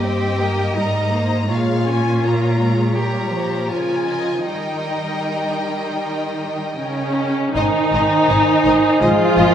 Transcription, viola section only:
0.04 0.40 C4 medium
0.40 0.76 A#3 medium
0.76 1.13 G3 soft
1.13 1.50 A#3 soft
1.50 1.85 G#3 medium
1.86 2.22 C#4 medium
2.24 2.59 A#3 medium
2.59 2.94 G#3 soft
2.95 3.32 G3 medium
3.32 3.69 F3 soft
3.70 4.46 F3 soft
4.47 6.79 G3 soft
6.78 7.51 C#4 medium
7.55 9.01 D#4 medium
9.01 9.54 F4 loud

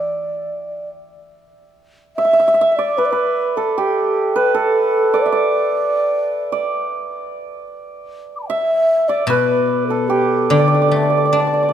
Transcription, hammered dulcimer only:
0.00 0.91 D5 medium
0.00 0.34 E5 medium
2.18 2.24 E5 medium
2.25 2.33 E5 medium
2.33 2.39 E5 medium
2.40 2.47 E5 medium
2.48 2.54 E5 medium
2.54 2.61 E5 medium
2.61 4.91 E5 medium
2.79 5.13 D5 medium
2.98 3.12 B4 medium
3.12 4.35 B4 medium
3.57 4.54 A4 medium
3.78 6.92 G4 medium
4.36 7.08 B4 medium
4.54 7.47 A4 medium
5.14 5.32 D5 medium
5.26 7.55 E5 medium
5.32 6.52 D5 medium
6.52 8.99 D5 medium
8.50 10.79 E5 medium
9.09 10.50 D5 medium
9.30 11.73 B4 medium
9.90 11.73 A4 medium
10.10 11.73 G4 medium
10.51 10.59 D5 medium
10.59 10.67 D5 soft
10.68 10.74 D5 medium
10.75 10.81 D5 soft
10.82 10.88 D5 medium
10.89 10.96 D5 soft
10.96 11.02 D5 soft
11.03 11.10 D5 soft
11.10 11.17 D5 soft
11.17 11.25 D5 soft
11.25 11.33 D5 soft
11.33 11.40 D5 soft
11.40 11.47 D5 soft
11.47 11.53 D5 soft
11.54 11.62 D5 soft
11.63 11.68 D5 soft
11.69 11.73 D5 medium

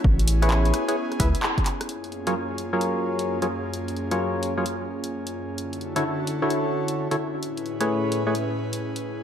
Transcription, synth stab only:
0.42 0.85 E4 medium
0.42 0.85 G#4 medium
0.42 0.85 B4 medium
0.42 0.85 C#5 loud
0.88 0.96 E4 medium
0.88 0.96 G#4 medium
0.88 0.96 B4 medium
0.88 0.96 C#5 medium
1.20 1.28 E4 loud
1.20 1.28 G#4 medium
1.20 1.28 B4 medium
1.20 1.28 E5 loud
2.27 2.35 F#3 medium
2.27 2.35 F4 medium
2.27 2.35 G#4 medium
2.27 2.35 A#4 medium
2.27 2.35 C#5 loud
2.73 3.39 F#3 medium
2.73 3.39 F4 medium
2.73 3.39 G#4 medium
2.73 3.39 A#4 medium
2.73 3.39 C#5 loud
3.42 3.47 F#3 medium
3.42 3.47 F4 medium
3.42 3.47 G#4 medium
3.42 3.47 A#4 medium
3.42 3.47 C#5 medium
4.11 4.54 F#3 medium
4.11 4.54 F4 medium
4.11 4.54 G#4 medium
4.11 4.54 A#4 medium
4.11 4.54 C#5 loud
4.57 4.65 F#3 medium
4.57 4.65 F4 medium
4.57 4.65 G#4 medium
4.57 4.65 A#4 medium
4.57 4.65 C#5 medium
5.96 6.04 D3 loud
5.96 6.04 E4 medium
5.96 6.04 F#4 medium
5.96 6.04 A4 medium
5.96 6.04 C#5 loud
6.42 7.08 D3 medium
6.42 7.08 E4 medium
6.42 7.08 F#4 medium
6.42 7.08 A4 medium
6.42 7.08 C#5 loud
7.11 7.16 D3 medium
7.11 7.16 E4 medium
7.11 7.16 F#4 medium
7.11 7.16 A4 medium
7.11 7.16 C#5 medium
7.80 8.23 A3 medium
7.80 8.23 E4 medium
7.80 8.23 G#4 medium
7.80 8.23 B4 medium
7.80 8.23 C#5 medium
8.27 8.34 A3 medium
8.27 8.34 E4 medium
8.27 8.34 G#4 medium
8.27 8.34 B4 medium
8.27 8.34 C#5 medium

